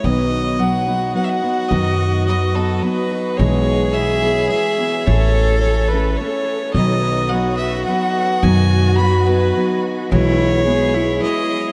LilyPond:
<<
  \new Staff \with { instrumentName = "Fiddle" } { \time 3/4 \key b \mixolydian \tempo 4 = 107 dis''4 fis''4 fis''32 e''32 fis''8. | dis''4 dis''8 a'8 b'4 | cis''4 e''4 e''4 | cis''4 cis''8 b'8 cis''4 |
dis''4 fis''8 e''8 fis''4 | gis''4 b''8 b'4 r8 | cis''2 dis''4 | }
  \new Staff \with { instrumentName = "Cello" } { \time 3/4 \key b \mixolydian fis'2.~ | fis'2. | gis'2. | a'2~ a'8 r8 |
fis'2.~ | fis'2. | e'4 gis'8 e'4. | }
  \new Staff \with { instrumentName = "Steel-string acoustic guitar" } { \time 3/4 \key b \mixolydian <b, dis fis b dis' b'>4 <fis b dis' b'>8 <fis b dis' b'>8 <fis b dis' b'>8 <fis b dis' b'>8 | <b, dis fis b dis' b'>4 <fis b dis' b'>8 <fis b dis' b'>8 <fis b dis' b'>8 <fis b dis' b'>8 | <b, e gis b e' gis'>4 <gis b e' gis'>8 <gis b e' gis'>8 <gis b e'>8 <gis b e' gis'>8 | <a, e a cis' e' a'>4 <a cis' e' a'>8 <a cis' e' a'>8 <a cis' e' a'>4 |
<b, dis fis b dis' b'>4 <fis b dis' b'>4 <fis b dis' b'>4 | <b, dis fis b dis' b'>4 <fis b dis' b'>8 <fis b dis' b'>8 <fis b dis' b'>4 | <b, e gis b e' gis'>4 <gis b e' gis'>8 <gis b e' gis'>8 <gis b e' gis'>4 | }
  \new Staff \with { instrumentName = "Upright bass" } { \clef bass \time 3/4 \key b \mixolydian b,,2 r4 | fis,2 r4 | b,,2 r4 | a,,2 r4 |
b,,2 r4 | fis,2 r4 | b,,2 r4 | }
>>